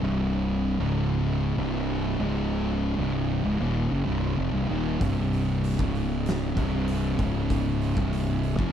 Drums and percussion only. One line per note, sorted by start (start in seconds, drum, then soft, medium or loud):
5.01 kick loud
5.01 open hi-hat medium
5.33 open hi-hat soft
5.64 open hi-hat medium
5.79 kick loud
5.95 open hi-hat soft
6.26 snare loud
6.26 open hi-hat medium
6.57 kick loud
6.57 open hi-hat medium
6.88 open hi-hat medium
7.19 kick loud
7.19 open hi-hat medium
7.50 kick loud
7.50 open hi-hat medium
7.82 open hi-hat soft
7.97 kick loud
8.13 open hi-hat medium
8.43 open hi-hat soft
8.59 kick loud